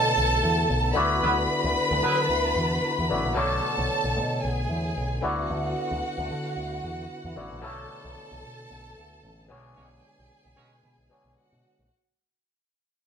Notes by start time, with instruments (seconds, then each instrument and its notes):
Already playing: picked electric bass B2, clav B2 B3 E4 A4 C#5 D5, tonewheel organ D3 A3 B3, violin section A4 A5
0.17 picked electric bass B1
0.43 picked electric bass E2
0.70 picked electric bass B1
0.93 picked electric bass D2, clav D3 B3 E4 F#4 D5, tonewheel organ D3 E4 F#4, violin section B4 B5
1.23 picked electric bass D2, horn section F#3 B3 E4 B4
1.64 picked electric bass D2
1.91 picked electric bass D2
2.03 picked electric bass D3, horn section F#3 B3 E4 B4
2.29 picked electric bass D2
2.55 picked electric bass E2
2.99 picked electric bass E2
3.09 picked electric bass A1, clav D3 B3 E4 F#4 D5
3.25 picked electric bass A#1
3.35 picked electric bass B1, clav B2 F#3 A3 E4 C#5 D5, tonewheel organ A3, violin section A4 A5
3.78 picked electric bass B1
4.04 picked electric bass B1
4.17 picked electric bass B2
4.42 picked electric bass B1, violin section G#4 G#5
4.69 picked electric bass E2
4.97 picked electric bass B1
5.21 picked electric bass D2, clav D3 B3 E4 F#4 D5, tonewheel organ D3 E4 F#4, violin section F#4 F#5
5.50 picked electric bass D2
5.91 picked electric bass D2
6.18 picked electric bass D2
6.31 picked electric bass D3
6.56 picked electric bass D2
6.83 picked electric bass E2
7.24 picked electric bass E2
7.36 picked electric bass A1, clav D3 B3 E4 F#4 D5
7.51 picked electric bass A#1
7.62 picked electric bass B1, clav B2 B3 C#4 E4 A4 C#5, tonewheel organ A3 B3, violin section A4 A5
7.70 clav D4
8.04 picked electric bass B1
8.31 picked electric bass B1
8.43 picked electric bass B2
8.70 picked electric bass B1
8.97 picked electric bass D2
9.23 picked electric bass A1
9.49 picked electric bass B1, clav B2 B3 C#4 G#4 C#5, tonewheel organ G#3, violin section G#4 G#5
9.57 clav D4
9.76 picked electric bass B1, horn section G#3 C#4 F#4 C#5
10.19 picked electric bass B1
10.45 picked electric bass B1
10.56 picked electric bass B2, horn section G#3 C#4 F#4 C#5
10.83 picked electric bass B2
10.98 picked electric bass B1
11.10 clav B2 B3 D4 G#4 C#5
11.24 picked electric bass B1
11.37 violin section F#4 F#5
11.52 picked electric bass B2
11.79 picked electric bass A#1